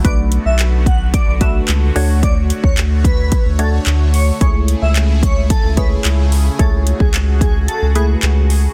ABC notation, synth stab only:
X:1
M:4/4
L:1/8
Q:1/4=110
K:A
V:1 name="Synth stab"
[A,DFB]2 z3 [A,DFB]2 [A,DFc]- | [A,DFc]2 z3 [A,DFc]2 z | [A,EGc]2 z3 [A,EGc]2 z | [A,EGc]2 z3 [A,EGB]2 z |]